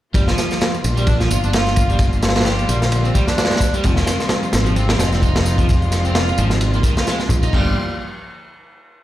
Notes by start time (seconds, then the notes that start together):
0.14 G1 D3 F3 G3 A#3 F4, kick, ride, tambourine
0.28 F3, snare, tambourine
0.38 snare, ride, tambourine
0.51 snare, tambourine
0.61 snare, ride, tambourine
0.74 ride, tambourine
0.84 A#1, ride, tambourine
0.97 G3, tambourine
1.07 D4, kick, ride, tambourine
1.20 F3, snare, tambourine
1.30 G1 F4, ride, tambourine
1.43 D4, tambourine
1.53 F4, snare, ride, tambourine
1.66 snare, tambourine
1.76 kick, ride, tambourine
1.89 G3, tambourine
1.99 kick, ride, tambourine
2.13 tambourine
2.22 snare, ride, tambourine
2.29 snare, ride
2.35 D4, snare, ride, tambourine
2.40 snare, ride
2.45 G4, snare, ride, tambourine
2.59 ride, tambourine
2.68 A#1 G3, ride, tambourine
2.82 snare, tambourine
2.92 ride, tambourine
3.05 C4, tambourine
3.15 G3, kick, ride, tambourine
3.27 D4, snare, tambourine
3.38 D4, snare, ride, tambourine
3.45 snare, ride
3.50 snare, ride, tambourine
3.56 snare, ride
3.60 kick, ride, tambourine
3.74 G3, ride, tambourine
3.83 F1 C3 F3 G#3 F4, kick, ride, tambourine
3.96 D#3, snare, tambourine
4.06 snare, ride, tambourine
4.20 snare, tambourine
4.29 snare, ride, tambourine
4.43 ride, tambourine
4.53 G#1, snare, ride, tambourine
4.66 F3, ride, tambourine
4.76 C4, ride, tambourine
4.89 D#3, snare, ride, tambourine
4.99 F1 D#4, snare, ride, tambourine
5.12 C4, snare, tambourine
5.22 D#4, kick, ride, tambourine
5.35 snare, ride, tambourine
5.46 snare, tambourine
5.58 F3, kick, ride, tambourine
5.69 kick, ride, tambourine
5.82 tambourine
5.92 snare, ride, tambourine
6.05 C4, tambourine
6.15 F4, snare, ride, tambourine
6.28 ride, tambourine
6.38 G#1 F3, ride, tambourine
6.50 snare, tambourine
6.61 ride, tambourine
6.74 A#3, tambourine
6.83 D#3, kick, ride, tambourine
6.97 F4, snare, tambourine
7.07 G#3, snare, ride, tambourine
7.20 snare, tambourine
7.29 A#1, kick, ride, tambourine
7.43 D#4, ride, tambourine
7.53 G1 D3 F3 G3 A#3 F4, kick, crash